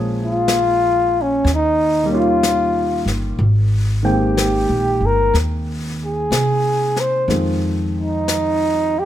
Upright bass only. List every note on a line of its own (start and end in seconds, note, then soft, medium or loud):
0.00 1.41 A#1 medium
1.44 3.02 D#2 medium
3.06 3.36 G1 medium
3.39 4.64 G#1 medium
4.69 4.99 A#1 medium
5.00 5.31 G1 medium
5.34 6.27 D#2 medium
6.31 7.24 C3 medium
7.28 9.05 F2 medium